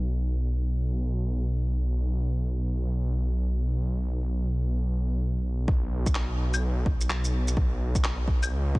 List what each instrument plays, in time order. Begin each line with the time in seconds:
Already playing: detuned saw bass B1
5.68 detuned saw bass B1, kick
6.06 kick, shaker
6.15 clap
6.54 claves, shaker
6.86 detuned saw bass B1, kick
7.01 shaker
7.10 clap
7.24 shaker
7.48 shaker
7.57 detuned saw bass B1, kick
7.95 kick, shaker
8.04 clap
8.28 kick
8.43 claves, shaker
8.51 detuned saw bass C#2
8.75 kick